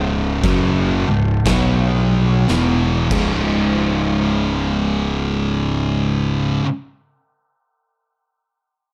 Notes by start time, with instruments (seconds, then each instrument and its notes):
Already playing: picked electric bass C#1, overdriven electric guitar C#2 G#2 C#3
0.44 picked electric bass F#1, overdriven electric guitar F#2 C#3 F#3, kick, crash
1.08 picked electric bass C#1, overdriven electric guitar C#2 G#2
1.45 picked electric bass B1, overdriven electric guitar B2 F#3 B3, kick, snare, crash
2.48 picked electric bass E1, overdriven electric guitar E2 B2 E3, snare
3.10 picked electric bass C#1, overdriven electric guitar C#2 G#2 C#3 G#3, kick, crash
3.15 overdriven electric guitar F4